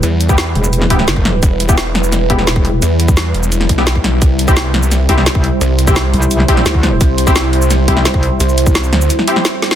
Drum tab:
HH |x-x-x-o-x-x-x-o-|x-x-x-o-x-x-x-o-|x-x-x-o-x-x-x-o-|x-x-x-o-x-x-x-o-|
SH |x-xxx--xx---x---|x-xxx--xx---x---|x-xxx--xx---x---|x-xxx--xx---x---|
SD |----o----o-oo-o-|----o-o-o--oo---|----o----o-oo-o-|----o-o-o--oo---|
BD |---o------o--o--|o--o------o--o--|---o------o--o--|o--o------o--o--|

HH |x-x-x-o-x-x-x-o-|x-x-x-o-x-x-x-o-|x-x-x-o-x-x-x-o-|
SH |x-xxx--xx---x---|x-xxx--xx---x---|xxxxxx-xx---x--x|
SD |----o----o-oo-o-|----o---o--oo---|----o-o--o-oo-oo|
BD |---o------o--o--|o--o------o--o--|---o------------|